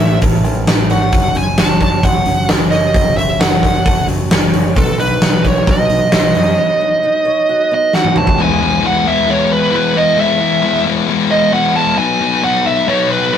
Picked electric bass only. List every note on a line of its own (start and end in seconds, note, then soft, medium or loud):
0.00 0.19 A1 medium
0.22 0.43 A1 medium
0.44 0.65 A1 medium
0.66 0.88 A1 medium
0.89 1.10 G#1 medium
1.13 1.34 F#1 medium
1.35 1.56 F#1 medium
1.58 1.79 F#1 medium
1.81 2.02 F#1 medium
2.03 2.24 F#1 medium
2.25 2.47 F#1 medium
2.49 2.70 F#1 medium
2.71 2.92 F#1 medium
2.94 3.15 F#1 medium
3.16 3.37 F#1 medium
3.39 3.60 F#1 medium
3.63 3.84 F#1 medium
3.86 4.06 F#1 medium
4.07 4.28 F#1 medium
4.31 4.52 F#1 medium
4.54 4.74 F#1 medium
4.76 4.97 B1 medium
4.97 5.19 B1 medium
5.21 5.42 B1 medium
5.44 5.65 B1 medium
5.67 5.88 B1 medium
5.90 6.11 B1 medium
6.13 6.33 B1 medium
6.35 6.56 F#2 medium